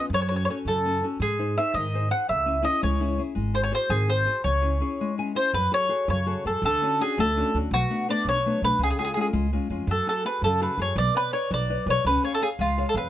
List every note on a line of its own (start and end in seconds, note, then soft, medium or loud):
0.10 0.45 F#2 medium
0.10 0.47 F#3 medium
0.14 0.20 C#5 medium
0.22 0.27 C#5 medium
0.29 0.48 C#4 soft
0.29 0.48 F#4 soft
0.29 0.49 A4 soft
0.29 0.35 C#5 medium
0.36 0.42 C#5 medium
0.45 0.49 C#5 medium
0.49 0.78 C#4 soft
0.49 0.78 F#4 soft
0.49 0.78 A4 medium
0.49 0.57 C#5 medium
0.65 1.01 F#2 medium
0.65 1.02 C#3 medium
0.65 1.05 A4 medium
0.85 1.02 C#4 soft
0.85 1.02 F#4 soft
0.85 1.03 A4 soft
1.03 1.17 C#4 soft
1.03 1.17 F#4 soft
1.03 1.18 A4 soft
1.20 1.55 G#2 medium
1.20 1.56 G#3 medium
1.20 1.58 G#4 medium
1.39 1.57 D#4 soft
1.39 1.57 G#4 soft
1.39 1.57 C5 soft
1.58 1.86 D#4 soft
1.58 1.87 G#4 soft
1.58 1.87 C5 medium
1.58 1.74 E5 medium
1.74 2.09 G#2 medium
1.74 2.11 D#3 medium
1.74 2.08 D#5 medium
1.94 2.09 D#4 soft
1.94 2.09 G#4 soft
1.94 2.10 C5 soft
2.10 2.25 D#4 soft
2.10 2.25 G#4 soft
2.10 2.25 C5 soft
2.10 2.28 F#5 medium
2.28 2.64 C#2 medium
2.28 2.63 C#3 medium
2.28 2.62 E5 medium
2.46 2.62 C#4 soft
2.46 2.61 E4 soft
2.46 2.62 G#4 soft
2.62 2.92 C#4 soft
2.62 2.92 E4 soft
2.62 2.93 G#4 medium
2.62 2.83 D#5 medium
2.82 3.18 C#2 medium
2.82 3.18 G#3 medium
2.82 3.21 C#5 medium
3.00 3.16 C#4 soft
3.00 3.18 E4 soft
3.00 3.18 G#4 soft
3.18 3.32 C#4 soft
3.18 3.33 E4 soft
3.18 3.33 G#4 soft
3.35 3.71 G#1 medium
3.35 3.71 G#3 medium
3.53 3.70 F#4 soft
3.53 3.70 G#4 soft
3.53 3.71 C5 soft
3.53 3.63 C5 medium
3.63 3.73 C#5 medium
3.72 4.01 F#4 soft
3.72 4.01 G#4 soft
3.72 4.02 C5 soft
3.72 3.91 C5 medium
3.90 4.25 G#1 medium
3.90 4.26 D#3 medium
3.90 4.09 G#4 medium
4.08 4.24 F#4 medium
4.08 4.25 G#4 soft
4.08 4.25 C5 medium
4.08 4.44 C5 medium
4.25 4.41 F#4 soft
4.25 4.41 G#4 soft
4.25 4.41 C5 soft
4.44 4.80 C#2 medium
4.44 4.80 C#3 medium
4.44 5.14 C#5 medium
4.62 4.79 C#4 soft
4.62 4.80 E4 soft
4.62 4.80 G#4 soft
4.80 5.10 C#4 soft
4.80 5.11 E4 soft
4.80 5.11 G#4 medium
5.01 5.36 G#3 medium
5.18 5.34 C#4 soft
5.18 5.34 E4 soft
5.18 5.34 G#4 soft
5.18 5.35 G#5 medium
5.35 5.50 C#4 soft
5.35 5.50 E4 soft
5.35 5.50 G#4 soft
5.35 5.53 C5 medium
5.54 5.66 F#2 medium
5.54 5.90 F#3 medium
5.54 5.72 B4 medium
5.72 5.88 F#4 soft
5.72 5.88 G#4 soft
5.72 5.89 A4 medium
5.72 6.07 C#5 medium
5.89 6.19 F#4 soft
5.89 6.19 G#4 medium
5.89 6.20 A4 medium
6.08 6.32 F#2 medium
6.08 6.44 C#3 medium
6.08 6.44 C#5 medium
6.26 6.45 F#4 medium
6.26 6.44 G#4 soft
6.26 6.45 A4 medium
6.45 6.57 F#2 medium
6.45 6.60 F#4 soft
6.45 6.60 G#4 soft
6.45 6.61 A4 medium
6.45 6.63 A4 medium
6.62 6.74 D2 loud
6.62 6.99 D3 medium
6.62 7.02 A4 medium
6.82 6.99 C#4 soft
6.82 6.99 D4 soft
6.82 7.00 F#4 medium
7.00 7.29 C#4 medium
7.00 7.29 D4 soft
7.00 7.30 F#4 medium
7.00 7.19 G#4 medium
7.18 7.41 D2 medium
7.18 7.53 A3 medium
7.18 7.57 A4 medium
7.36 7.54 C#4 soft
7.36 7.54 D4 soft
7.36 7.54 F#4 medium
7.54 7.66 D2 medium
7.54 7.69 C#4 soft
7.54 7.69 D4 soft
7.54 7.69 F#4 soft
7.71 7.83 B1 medium
7.71 8.08 B2 medium
7.71 8.06 F#4 medium
7.90 8.07 A3 soft
7.90 8.07 B3 soft
7.90 8.08 D4 soft
8.08 8.37 A3 medium
8.08 8.37 B3 soft
8.08 8.37 D4 medium
8.08 8.28 D5 loud
8.25 8.49 B1 medium
8.25 8.62 F#3 medium
8.25 8.61 C#5 medium
8.46 8.61 A3 medium
8.46 8.61 B3 soft
8.46 8.62 D4 medium
8.62 8.73 B1 medium
8.62 8.77 A3 soft
8.62 8.77 B3 soft
8.62 8.77 D4 soft
8.62 8.80 B4 loud
8.79 8.91 C#2 medium
8.79 9.15 C#3 medium
8.83 8.89 G#4 medium
8.90 8.96 G#4 medium
8.98 9.15 G#3 soft
8.98 9.16 C#4 soft
8.98 9.16 F4 soft
8.98 9.03 G#4 medium
9.04 9.11 G#4 medium
9.14 9.32 G#3 medium
9.14 9.46 C#4 soft
9.14 9.46 F4 medium
9.14 9.19 G#4 medium
9.21 9.26 G#4 soft
9.33 9.57 C#2 medium
9.33 9.51 G#3 medium
9.53 9.69 G#3 soft
9.53 9.70 C#4 soft
9.53 9.70 F4 soft
9.70 9.82 F2 medium
9.70 9.85 G#3 soft
9.70 9.85 C#4 soft
9.70 9.85 F4 soft
9.87 9.99 F#2 medium
9.87 10.24 F#3 medium
9.87 10.07 A4 medium
10.07 10.24 F#4 soft
10.07 10.24 G#4 soft
10.07 10.24 A4 soft
10.07 10.26 A4 medium
10.25 10.54 F#4 soft
10.25 10.54 G#4 soft
10.25 10.54 A4 medium
10.25 10.42 B4 medium
10.42 10.66 F#2 medium
10.42 10.78 C#3 medium
10.42 10.60 A4 medium
10.61 10.77 F#4 medium
10.61 10.77 G#4 soft
10.61 10.77 A4 soft
10.61 10.80 B4 medium
10.78 10.90 F#2 medium
10.78 10.93 F#4 soft
10.78 10.93 G#4 soft
10.78 10.93 A4 soft
10.82 10.98 C#5 medium
10.96 11.08 B1 medium
10.96 11.32 B3 medium
10.96 11.15 D5 medium
11.15 11.32 B4 soft
11.15 11.33 B4 medium
11.15 11.32 C#5 soft
11.15 11.33 D5 soft
11.33 11.62 B4 soft
11.33 11.50 C#5 medium
11.33 11.62 C#5 soft
11.33 11.62 D5 medium
11.51 11.74 B1 medium
11.51 11.86 F#3 medium
11.51 11.86 D5 medium
11.70 11.87 B4 medium
11.70 11.88 C#5 soft
11.70 11.88 D5 soft
11.86 11.98 B1 medium
11.86 12.02 B4 soft
11.86 12.03 C#5 soft
11.86 12.03 D5 medium
11.90 12.06 C#5 medium
12.05 12.17 C#2 medium
12.05 12.41 C#4 medium
12.05 12.23 B4 medium
12.24 12.40 G#4 soft
12.24 12.41 C#5 soft
12.24 12.32 C#5 medium
12.24 12.42 F5 medium
12.34 12.42 A4 medium
12.42 12.70 G#4 medium
12.42 12.48 G#4 medium
12.42 12.71 C#5 soft
12.42 12.71 F5 medium
12.59 12.82 C#2 medium
12.59 12.94 G#3 medium
12.59 12.85 F4 medium
12.78 12.93 G#4 soft
12.78 12.94 C#5 medium
12.78 12.94 F5 medium
12.89 12.96 A4 medium
12.94 13.06 F2 medium
12.94 13.09 G#4 soft
12.94 13.09 B4 medium
12.94 13.09 C#5 soft
12.94 13.09 F5 soft